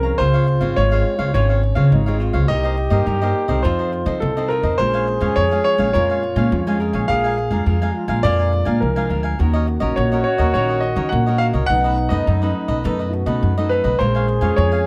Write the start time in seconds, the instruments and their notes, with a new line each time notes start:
Already playing: upright bass C2, nylon-string guitar F3 C#4 G#4 C5, trombone C4, grand piano A#4
0.03 cavaquinho C#5 F5 A#5
0.18 upright bass C#2, nylon-string guitar C#3 C4 F4 G#4, trombone F4, cavaquinho F4 C5 C#5 F5, grand piano C5
0.34 cavaquinho C5 C#5 F5
0.47 muted cavaquinho stroke
0.61 upright bass G#1, nylon-string guitar C4 F4 G#4, cavaquinho C5 C#5 F5
0.76 upright bass G#1, nylon-string guitar G#3, cavaquinho F4 C5 C#5 F5, grand piano C#5
0.91 nylon-string guitar C4 F4 G#4, cavaquinho C5 C#5 F5
1.18 upright bass C#2, nylon-string guitar C4 F4 G#4, cavaquinho C5 C#5 F5
1.34 upright bass G#1, nylon-string guitar C#3 C4 F4 G#4, trombone C#4, cavaquinho F4 C5 C#5 F5, grand piano C#5
1.49 cavaquinho C5 C#5 F5
1.63 muted cavaquinho stroke
1.75 upright bass C#3, nylon-string guitar C4 F4 G#4, cavaquinho C5 C#5 F5
1.92 upright bass G#1, nylon-string guitar G#3, trombone D#4
2.06 nylon-string guitar C4 F4 G#4, cavaquinho C5 C#5 F5
2.19 trombone F4, cavaquinho F4 C5 C#5 F5
2.33 upright bass C#2, cavaquinho C5 C#5 F5
2.48 upright bass C2, nylon-string guitar C3 A#3 D#4 G4, cavaquinho D#4 A#4 C5 D#5, trombone G4, grand piano D#5
2.63 cavaquinho A#4 C5 D#5
2.77 muted cavaquinho stroke
2.90 upright bass G2, nylon-string guitar A#3 D#4 G4, cavaquinho A#4 C5 D#5
3.06 upright bass G2, nylon-string guitar G3, cavaquinho D#4 A#4 C5 D#5
3.22 nylon-string guitar A#3 D#4 G4, cavaquinho A#4 C5 D#5
3.48 upright bass C2, nylon-string guitar C4 D#4 A4, cavaquinho A#4 C5 D#5
3.63 upright bass F2, nylon-string guitar F3, trombone F4, cavaquinho F4 A4 C5 D#5, grand piano C5
3.79 cavaquinho A4 C5 D#5
3.92 muted cavaquinho stroke
4.06 upright bass F3, nylon-string guitar C4 D#4 A4, cavaquinho A4 C5 D#5
4.20 upright bass C2, nylon-string guitar C3, grand piano A4
4.37 nylon-string guitar C4 D#4 A4, cavaquinho A4 C5 D#5
4.48 cavaquinho F4 A4 C5 D#5, grand piano A#4
4.63 upright bass F2, cavaquinho A4 C5 D#5
4.78 upright bass A#1, nylon-string guitar A#2 G#3 C#4 F4, trombone G#4, cavaquinho A#4 C#5 F5 G#5, grand piano C5
4.94 cavaquinho C#5 F5 G#5
5.07 muted cavaquinho stroke
5.21 upright bass F2, nylon-string guitar G#3 C#4 F4, cavaquinho C#5 F5 G#5
5.36 upright bass F2, nylon-string guitar F3, cavaquinho A#4 C#5 F5 G#5, grand piano C#5
5.51 nylon-string guitar G#3 C#4 F4, cavaquinho C#5 F5 G#5
5.64 grand piano C#5
5.78 upright bass A#1, nylon-string guitar G#3 C#4 F4, cavaquinho C#5 F5 G#5
5.93 upright bass F2, nylon-string guitar A#2 G#3 C#4 F4, trombone F4, cavaquinho A#4 C#5 F5 G#5, grand piano C#5
6.10 cavaquinho C#5 F5 G#5
6.23 muted cavaquinho stroke
6.36 upright bass A#2, nylon-string guitar G#3 C#4 F4, cavaquinho C#5 F5 G#5
6.52 upright bass F2, nylon-string guitar F3, trombone F4
6.67 nylon-string guitar G#3 C#4 F4, cavaquinho C#5 F5 G#5
6.79 trombone G#4, cavaquinho A#4 C#5 F5 G#5
6.93 upright bass A#1, cavaquinho C#5 F5 G#5
7.08 upright bass A#1, nylon-string guitar A#2 G#3 D4 F4, cavaquinho D4 A#4 F5 G#5, trombone G#4, grand piano F5
7.24 cavaquinho A#4 F5 G#5
7.38 muted cavaquinho stroke
7.51 upright bass F2, nylon-string guitar G#3 D4 F4, cavaquinho A#4 F5 G#5
7.66 upright bass F2, nylon-string guitar F3, cavaquinho D4 A#4 F5 G#5, trombone G#4
7.82 nylon-string guitar G#3 D4 F4, cavaquinho A#4 F5 G#5
7.95 trombone F4
8.08 upright bass A#1, nylon-string guitar G#3 D4 F4, cavaquinho A#4 F5 G#5
8.23 upright bass F2, nylon-string guitar A#2 G#3 D4 F4, cavaquinho D4 A#4 F5 G#5, grand piano D5
8.39 cavaquinho A#4 F5 G#5
8.52 muted cavaquinho stroke
8.65 upright bass A#2, nylon-string guitar G#3 D4 F4, cavaquinho A#4 F5 G#5
8.80 upright bass C2, nylon-string guitar F3, grand piano A#4
8.96 nylon-string guitar G#3 D4 F4, cavaquinho A#4 F5 G#5
9.09 upright bass D2, cavaquinho D4 A#4 F5 G#5
9.23 cavaquinho A#4 F5 G#5
9.39 upright bass D#2, nylon-string guitar D#3 C#4 F#4 A#4, cavaquinho F#4 A#4 C#5 D#5, trombone F#4
9.53 cavaquinho A#4 C#5 D#5
9.67 muted cavaquinho stroke
9.80 upright bass A#1, nylon-string guitar C#4 F#4 A#4, cavaquinho A#4 C#5 D#5
9.96 upright bass A#1, nylon-string guitar A#2, cavaquinho F#4 A#4 C#5 D#5, grand piano C#5
10.12 nylon-string guitar C#4 F#4 A#4, cavaquinho A#4 C#5 D#5
10.24 grand piano C#5
10.38 upright bass D#2, nylon-string guitar C#4 F#4 A#4, cavaquinho A#4 C#5 D#5
10.54 upright bass A#1, nylon-string guitar D#3 C#4 F#4 A#4, cavaquinho F#4 A#4 C#5 D#5, grand piano C#5
10.69 cavaquinho A#4 C#5 D#5
10.80 grand piano D#5, muted cavaquinho stroke
10.96 upright bass D#3, nylon-string guitar C#4 F#4 A#4, cavaquinho A#4 C#5 D#5
11.09 upright bass A#1, nylon-string guitar A#2, grand piano F#5
11.26 nylon-string guitar C#4 F#4 A#4, cavaquinho A#4 C#5 D#5
11.38 cavaquinho F#4 A#4 C#5 D#5, grand piano F5
11.53 upright bass C2, cavaquinho A#4 C#5 D#5
11.66 upright bass B1, nylon-string guitar B2 A3 C#4, cavaquinho D#4 A4 B4, trombone D#4, grand piano F#5
11.71 nylon-string guitar D#4, cavaquinho D#5
11.84 cavaquinho A4 B4 D#5
11.97 muted cavaquinho stroke
12.09 upright bass F#2, nylon-string guitar A3 C#4 D#4, cavaquinho A4 B4 D#5, grand piano D#5
12.26 upright bass F#2, nylon-string guitar F#3, cavaquinho D#4 A4 B4 D#5
12.42 nylon-string guitar A3 C#4 D#4, cavaquinho A4 B4 D#5
12.68 upright bass B1, cavaquinho A4 B4 D#5
12.84 upright bass F#2, nylon-string guitar B2 A3 C#4 D#4, cavaquinho D#4 A4 B4 D#5, trombone D#4
12.99 cavaquinho A4 B4 D#5
13.13 trombone F#4, muted cavaquinho stroke
13.26 upright bass B2, nylon-string guitar A3 C#4 D#4, cavaquinho A4 B4 D#5
13.42 upright bass F#2, nylon-string guitar F#3
13.58 nylon-string guitar A3 C#4 D#4, cavaquinho A4 B4 D#5
13.69 cavaquinho D#4 A4 B4 D#5, grand piano B4
13.84 upright bass B1, cavaquinho A4 B4 D#5
13.99 upright bass A#1, nylon-string guitar A#2 G#3 C#4 F4, trombone G#4, cavaquinho A#4 C#5 F5 G#5, grand piano C5
14.15 cavaquinho C#5 F5 G#5
14.28 muted cavaquinho stroke
14.41 upright bass F2, nylon-string guitar G#3 C#4 F4, cavaquinho C#5 F5 G#5
14.56 upright bass F2, nylon-string guitar F3, cavaquinho A#4 C#5 F5 G#5, grand piano C#5
14.72 cavaquinho C#5 F5 G#5